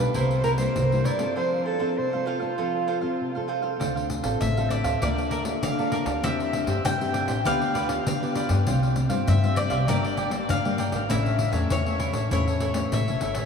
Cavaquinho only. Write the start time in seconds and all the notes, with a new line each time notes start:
Already playing: G4 B4 F5
0.14 E4 A#4 C5 E5
0.44 E4 A#4 C5 E5
0.58 A#4 C5 E5
0.92 A#4 C5 E5
1.04 E4 A#4 C5 E5
1.19 A#4 C5 E5
1.36 F4 A4 C5 F5
1.65 F4 A4 C5 F5
1.79 F4 A4 C5 F5
2.13 A4 C5 F5
2.26 F4 A4 C5 F5
2.40 A4 C5 F5
2.58 F4 A4 C5 F5
2.88 F4 A4 C5 F5
3.01 A4 C5 F5
3.35 A4 C5 F5
3.48 F4 A4 C5 F5
3.62 A4 C5 F5
3.80 D4 A4 C5 F5
3.95 A4 C5 F5
4.09 muted cavaquinho stroke
4.23 A4 C5 F5
4.57 A4 C5 F5
4.70 D4 A4 C5 F5
4.84 A4 C5 F5
5.02 A#4 D5 F5 A5
5.17 D5 F5 A5
5.31 A#4 D5 F5 A5
5.45 muted cavaquinho stroke
5.79 D5 F5 A5
5.92 A#4 D5 F5 A5
6.06 D5 F5 A5
6.24 D4 G4 C5 E5
6.40 G4 C5 E5
6.53 muted cavaquinho stroke
6.67 G4 C5 E5
7.01 G4 C5 E5
7.13 D4 G4 C5 E5
7.28 G4 C5 E5
7.45 F4 G4 B4 D5
7.61 G4 B4 D5
7.74 F4 G4 B4 D5
7.88 muted cavaquinho stroke
8.22 G4 B4 D5
8.35 F4 G4 B4 D5
8.49 G4 B4 D5
8.67 F4 G4 C5 F5
8.82 G4 C5 F5
8.96 muted cavaquinho stroke
9.09 G4 C5 F5
9.44 G4 C5 F5
9.57 F4 G4 C5 F5
9.70 G4 C5 F5
9.88 D4 A#4 D5 G5
10.04 A#4 D5 G5
10.17 D4 A#4 D5 G5
10.31 muted cavaquinho stroke
10.65 A#4 D5 G5
10.78 D4 A#4 D5 G5
10.92 A#4 D5 G5
11.09 E4 A4 C#5 E5
11.25 A4 C#5 E5
11.38 muted cavaquinho stroke
11.52 A4 C#5 E5
11.85 A4 C#5 E5
11.99 E4 A4 C#5 E5
12.13 A4 C#5 E5
12.31 E4 A4 C#5 E5
12.47 A4 C#5 E5
12.60 E4 A4 C#5 E5
12.74 muted cavaquinho stroke
13.08 A4 C#5 E5
13.21 E4 A4 C#5 E5
13.36 A4 C#5 E5